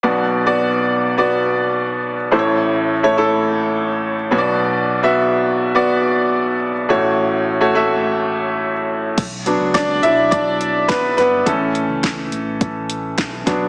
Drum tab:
CC |--------|--------|--------|--------|
HH |--------|--------|--------|--------|
SD |--------|--------|--------|--------|
BD |--------|--------|--------|--------|

CC |x-------|--------|
HH |xxxxxxxx|xxxxxxxx|
SD |--o---oo|--o---oo|
BD |o-o-o-o-|o-o-o-oo|